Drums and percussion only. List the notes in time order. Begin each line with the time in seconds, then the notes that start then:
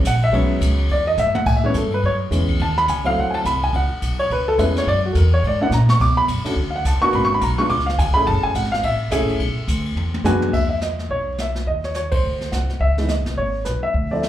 0.05 kick, hi-hat pedal, ride
0.22 ride
0.33 kick, ride
0.61 kick, hi-hat pedal, ride
0.78 ride
0.89 kick, ride
1.18 hi-hat pedal, high tom
1.35 high tom
1.46 kick, crash
1.74 kick, hi-hat pedal, ride
1.92 ride
2.03 kick, ride
2.32 kick, hi-hat pedal, ride
2.48 kick, ride
2.59 kick, ride
2.77 snare
2.88 kick, hi-hat pedal, ride
3.05 ride
3.16 kick
3.34 ride
3.45 kick, hi-hat pedal, ride
3.63 ride
3.74 kick, ride
4.02 kick, hi-hat pedal, ride
4.19 ride
4.30 kick, ride
4.59 kick, hi-hat pedal, ride
4.76 snare, ride
4.87 kick, ride
5.15 kick, hi-hat pedal, ride
5.44 kick, ride
5.72 snare, hi-hat pedal
5.89 snare
6.00 kick, crash
6.28 kick, hi-hat pedal, ride
6.45 snare, ride
6.57 kick
6.85 kick, hi-hat pedal, ride
7.13 kick, ride
7.41 kick, hi-hat pedal, ride
7.59 ride
7.70 kick, ride
7.80 snare
7.89 snare
7.98 kick, hi-hat pedal, ride
8.27 kick, ride
8.55 kick, hi-hat pedal, ride
8.65 snare
8.74 snare
8.83 kick, ride
9.11 kick, hi-hat pedal, ride
9.29 ride
9.40 kick, ride
9.68 kick, hi-hat pedal, ride
9.86 ride
9.97 high tom
10.14 high tom
10.25 hi-hat pedal, high tom
10.42 mid tom
10.53 brush sweep, kick, crash
10.81 snare, hi-hat pedal
10.99 snare
11.10 brush sweep, kick
11.38 snare, hi-hat pedal
11.55 snare
11.66 brush sweep, kick
11.84 snare
11.94 snare, hi-hat pedal
12.12 kick, ride
12.23 brush sweep
12.41 snare
12.52 snare, hi-hat pedal
12.70 snare
12.80 brush sweep, kick
12.98 snare
13.08 snare, hi-hat pedal
13.26 snare
13.37 brush sweep, kick
13.65 snare, hi-hat pedal
13.94 brush sweep, kick
14.23 snare, hi-hat pedal